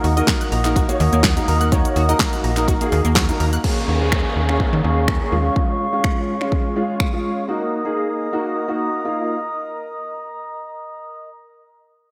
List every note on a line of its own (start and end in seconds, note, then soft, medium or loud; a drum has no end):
0.00 0.11 A#3 medium
0.00 0.11 D#4 medium
0.00 0.11 F#4 medium
0.00 0.11 A#4 loud
0.00 3.60 A#4 medium
0.00 3.33 D#5 medium
0.00 3.36 F#5 medium
0.00 3.41 D#6 medium
0.04 0.22 D#2 loud
0.04 0.12 F#4 medium
0.04 open hi-hat medium
0.04 shaker soft
0.17 0.57 A#3 medium
0.17 0.57 D#4 medium
0.17 0.57 F#4 medium
0.17 0.57 A#4 loud
0.17 0.24 D#5 medium
0.17 closed hi-hat medium
0.17 shaker medium
0.27 kick loud
0.27 snare medium
0.27 clap loud
0.27 closed hi-hat medium
0.27 shaker medium
0.41 0.48 F#6 medium
0.41 closed hi-hat medium
0.41 shaker medium
0.52 0.88 A#1 medium
0.52 0.60 A#5 medium
0.52 open hi-hat medium
0.52 shaker medium
0.65 0.85 A#3 medium
0.65 0.85 D#4 medium
0.65 0.85 F#4 medium
0.65 0.85 A#4 loud
0.65 clap medium
0.65 closed hi-hat medium
0.65 shaker medium
0.76 0.84 F#4 medium
0.76 kick loud
0.76 closed hi-hat medium
0.76 shaker medium
0.89 1.29 A#3 medium
0.89 0.96 A#3 medium
0.89 1.29 D#4 medium
0.89 1.29 F#4 medium
0.89 1.29 C#5 loud
0.89 closed hi-hat medium
0.89 shaker medium
1.00 1.10 D#2 loud
1.00 1.08 D#3 medium
1.00 open hi-hat medium
1.00 shaker medium
1.13 1.40 D#2 medium
1.13 1.20 A#3 medium
1.13 closed hi-hat medium
1.13 shaker medium
1.23 1.32 F#4 medium
1.23 kick loud
1.23 snare loud
1.23 clap loud
1.23 closed hi-hat medium
1.23 shaker medium
1.37 1.67 A#3 medium
1.37 1.67 D#4 medium
1.37 1.67 F#4 medium
1.37 1.67 A#4 medium
1.37 closed hi-hat medium
1.37 shaker medium
1.48 1.84 D#2 medium
1.48 1.56 A#5 medium
1.48 open hi-hat medium
1.48 shaker medium
1.61 1.68 F#6 medium
1.61 closed hi-hat medium
1.61 shaker medium
1.72 1.80 D#3 loud
1.72 2.03 A#3 medium
1.72 2.03 D#4 medium
1.72 2.03 F#4 medium
1.72 2.03 C#5 loud
1.72 kick loud
1.72 closed hi-hat medium
1.72 shaker medium
1.85 closed hi-hat medium
1.85 shaker medium
1.96 2.14 D#2 medium
1.96 2.04 F#4 medium
1.96 open hi-hat medium
1.96 shaker medium
2.09 2.49 A#3 medium
2.09 2.49 D#4 medium
2.09 2.49 F#4 medium
2.09 2.49 A#4 loud
2.09 2.16 D#5 medium
2.09 closed hi-hat medium
2.09 shaker medium
2.19 kick loud
2.19 snare medium
2.19 clap loud
2.19 closed hi-hat medium
2.19 shaker medium
2.33 2.40 F#6 medium
2.33 closed hi-hat medium
2.33 shaker medium
2.44 2.80 A#1 medium
2.44 2.52 A#5 medium
2.44 open hi-hat medium
2.44 shaker medium
2.57 2.77 A#3 medium
2.57 2.77 D#4 medium
2.57 2.77 F#4 medium
2.57 2.77 A#4 loud
2.57 clap medium
2.57 closed hi-hat medium
2.57 shaker medium
2.68 2.76 F#4 medium
2.68 kick loud
2.68 closed hi-hat medium
2.68 shaker medium
2.81 3.21 A#3 medium
2.81 2.88 A#3 medium
2.81 3.21 D#4 medium
2.81 3.21 F#4 medium
2.81 3.21 G#4 loud
2.81 closed hi-hat medium
2.81 shaker medium
2.92 3.02 D#2 loud
2.92 3.00 D#3 medium
2.92 open hi-hat medium
2.92 shaker medium
3.05 3.32 D#2 medium
3.05 3.12 A#3 medium
3.05 closed hi-hat medium
3.05 shaker medium
3.15 3.24 F#4 medium
3.15 kick loud
3.15 snare loud
3.15 clap loud
3.15 closed hi-hat medium
3.15 shaker medium
3.29 3.59 A#3 medium
3.29 3.59 D#4 medium
3.29 3.59 F#4 medium
3.29 3.59 A#4 medium
3.29 closed hi-hat medium
3.29 shaker medium
3.40 3.58 D#2 medium
3.40 3.48 A#5 medium
3.40 open hi-hat medium
3.40 shaker medium
3.53 3.60 F#6 medium
3.53 closed hi-hat medium
3.53 shaker medium
3.64 3.95 A#3 medium
3.64 3.95 C#4 medium
3.64 3.95 G#4 medium
3.64 5.08 A#4 medium
3.64 7.44 F5 medium
3.64 5.30 G#5 medium
3.64 7.44 C#6 medium
3.64 kick loud
3.64 crash medium
3.64 downlifter medium
3.88 4.24 D#2 medium
4.01 4.41 A#3 medium
4.01 4.41 C#4 medium
4.01 4.41 G#4 medium
4.12 finger snap loud
4.12 kick loud
4.36 4.64 D#2 medium
4.49 4.79 A#3 medium
4.49 4.79 C#4 medium
4.49 4.79 G#4 medium
4.49 finger snap medium
4.60 kick loud
4.73 4.81 D#3 loud
4.84 5.20 D#2 loud
4.84 5.15 A#3 medium
4.84 5.15 C#4 medium
4.84 5.15 G#4 medium
5.08 finger snap loud
5.08 kick loud
5.21 5.32 A#3 medium
5.21 5.31 C#4 medium
5.21 5.32 G#4 medium
5.32 5.50 D#2 medium
5.32 5.83 G#3 medium
5.32 5.83 C#4 medium
5.32 5.83 F4 medium
5.32 7.46 G#4 medium
5.32 7.46 C#5 medium
5.56 kick loud
5.93 6.33 G#3 medium
5.93 6.33 C#4 medium
5.93 6.33 F4 medium
6.04 finger snap loud
6.04 kick loud
6.41 6.71 G#3 medium
6.41 6.71 C#4 medium
6.41 6.71 F4 medium
6.41 finger snap medium
6.52 kick loud
6.76 7.07 G#3 medium
6.76 7.07 C#4 medium
6.76 7.07 F4 medium
7.00 finger snap loud
7.00 kick loud
7.13 7.43 G#3 medium
7.13 7.43 C#4 medium
7.13 7.43 F4 medium
7.48 7.79 A#3 medium
7.48 7.79 D#4 medium
7.48 7.79 F#4 medium
7.48 11.28 A#4 medium
7.48 11.28 D#5 medium
7.48 11.28 A#5 medium
7.48 11.28 D#6 medium
7.85 8.25 A#3 medium
7.85 8.25 D#4 medium
7.85 8.25 G#4 medium
8.33 8.63 A#3 medium
8.33 8.63 D#4 medium
8.33 8.63 F#4 medium
8.68 8.99 A#3 medium
8.68 8.99 D#4 medium
8.68 8.99 F#4 medium
9.05 9.35 A#3 medium
9.05 9.35 D#4 medium
9.05 9.35 F4 medium